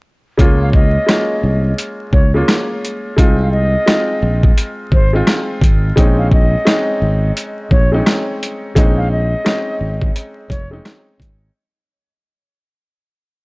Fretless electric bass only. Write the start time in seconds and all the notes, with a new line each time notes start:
0.39 C#2
1.43 C2
2.13 C#2
3.18 C2
4.22 A#1
4.92 G#1
5.62 G#1
5.97 A#1
7.02 G#1
7.71 A#1
8.76 A#1
9.81 G#1
10.50 F1
11.20 G#1